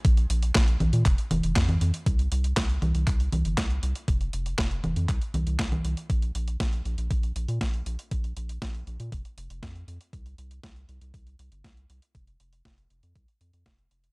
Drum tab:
HH |xxxxxxxxxxxxxxxx|xxxxxxxxxxxxxxxx|xxxxxxxxxxxxxxxx|xxxxxxxxxxxxxxxx|
CP |----x---x---x---|----x---x---x---|----x---x---x---|----------------|
SD |----o-------o---|----o-------o---|----o-------o---|----o-------o---|
CG |------o---o--o--|------o---o-----|------o---o--o--|----------------|
BD |o---o---o---o---|o---o---o---o---|o---o---o---o---|o---o---o---o---|

HH |xxxxxxxxxxxxxxxx|xxxxxxxxxxxxxxxx|xxxxxxxxxxxxxxxx|
CP |----------------|----------------|----------------|
SD |----o-------o---|----o-------o---|----o-------o---|
CG |----------------|----------------|----------------|
BD |o---o---o---o---|o---o---o---o---|o---o---o---o---|